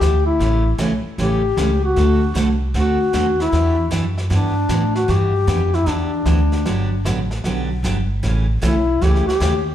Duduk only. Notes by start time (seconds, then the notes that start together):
Already playing: G4
0.27 E4
1.20 G4
1.85 F#4
2.78 F#4
3.42 E4
4.32 D4
4.96 F#4
5.11 G4
5.75 E4
5.90 D4
8.64 E4
9.04 G4
9.27 G4